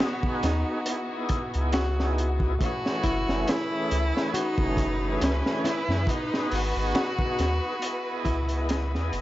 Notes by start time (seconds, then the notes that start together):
Already playing: B3 D#4 F#4 G#4
0.00 snare
0.23 kick
0.43 D#2 D#4, snare, closed hi-hat
0.85 B3 D#4, closed hi-hat
0.90 E4 G#4
1.29 kick, closed hi-hat
1.54 C#2, closed hi-hat
1.72 F#4, snare, closed hi-hat
2.00 snare
2.18 closed hi-hat
2.40 kick
2.59 A3 C#4 B4, kick, closed hi-hat
2.63 E3 F#4 G#4
2.86 snare
3.03 F#1 E4, kick, closed hi-hat
3.28 F#1, snare
3.47 E4, snare, closed hi-hat
3.91 C#2, closed hi-hat
4.17 snare
4.34 D#4 F#4, closed hi-hat
4.58 F#1, kick
4.77 kick, closed hi-hat
5.21 C#2 C#4, snare, closed hi-hat
5.46 snare
5.64 E4, snare, closed hi-hat
5.88 F#2, snare
6.06 B3 D#4, kick, closed hi-hat
6.11 F#4 G#4
6.34 snare
6.51 G#1 F#4, open hi-hat
6.76 G#1
6.95 F#4, snare, closed hi-hat
7.19 kick
7.38 D#2, snare, closed hi-hat
7.79 B3 D#5, closed hi-hat
7.84 E4 G#4
8.25 C#2 E4, kick, closed hi-hat
8.49 closed hi-hat
8.69 snare, closed hi-hat
8.94 E2, snare
9.13 F#1, closed hi-hat